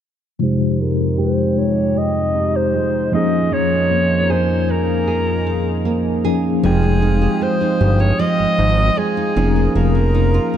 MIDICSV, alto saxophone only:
0, 0, Header, 1, 2, 480
1, 0, Start_track
1, 0, Key_signature, -4, "minor"
1, 0, Tempo, 779221
1, 249, Time_signature, 4, 2, 24, 8
1, 6513, End_track
2, 0, Start_track
2, 0, Title_t, "Alto saxophone"
2, 0, Program_c, 0, 65
2, 258, Note_on_c, 0, 72, 91
2, 496, Note_on_c, 0, 70, 83
2, 505, Note_off_c, 0, 72, 0
2, 736, Note_on_c, 0, 72, 90
2, 746, Note_off_c, 0, 70, 0
2, 976, Note_on_c, 0, 73, 89
2, 985, Note_off_c, 0, 72, 0
2, 1219, Note_on_c, 0, 75, 108
2, 1229, Note_off_c, 0, 73, 0
2, 1578, Note_on_c, 0, 72, 95
2, 1587, Note_off_c, 0, 75, 0
2, 1933, Note_off_c, 0, 72, 0
2, 1938, Note_on_c, 0, 75, 91
2, 2177, Note_on_c, 0, 73, 94
2, 2186, Note_off_c, 0, 75, 0
2, 2657, Note_on_c, 0, 72, 85
2, 2666, Note_off_c, 0, 73, 0
2, 2898, Note_on_c, 0, 70, 88
2, 2907, Note_off_c, 0, 72, 0
2, 3854, Note_off_c, 0, 70, 0
2, 4097, Note_on_c, 0, 68, 94
2, 4574, Note_on_c, 0, 72, 92
2, 4584, Note_off_c, 0, 68, 0
2, 4931, Note_on_c, 0, 73, 92
2, 4940, Note_off_c, 0, 72, 0
2, 5052, Note_on_c, 0, 75, 111
2, 5061, Note_off_c, 0, 73, 0
2, 5532, Note_on_c, 0, 68, 92
2, 5541, Note_off_c, 0, 75, 0
2, 6009, Note_off_c, 0, 68, 0
2, 6013, Note_on_c, 0, 70, 91
2, 6513, Note_off_c, 0, 70, 0
2, 6513, End_track
0, 0, End_of_file